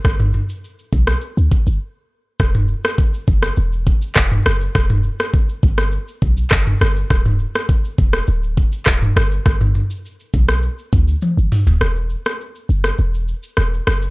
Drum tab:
HH |----------------|----------------|----------------|----------------|
SH |xxxxxxxxxxxx----|xxxxxxxxxxxxxxxx|xxxxxxxxxxxxxxxx|xxxxxxxxxxxxxxxx|
CP |----------------|------------x---|------------x---|------------x---|
SD |r------r--------|r--r---r----r-r-|r--r---r----r-r-|r--r---r----r-r-|
T1 |----------------|----------------|----------------|----------------|
T2 |-oo-------------|-o-----------o--|-o-----------o--|-o-----------o--|
FT |----------------|----------------|----------------|----------------|
BD |o-----o---o-----|o---o-o---o-o---|o---o-o---o-o---|o---o-o---o-o---|

HH |--------------o-|----------------|
SH |xxxxxxxxxxxxxxxx|xxxxxxxxxxxxxxxx|
CP |----------------|----------------|
SD |r------r--------|r--r---r----r-r-|
T1 |------------o---|----------------|
T2 |-oo-----------o-|----------------|
FT |---------------o|----------------|
BD |o-----o---o-----|----------------|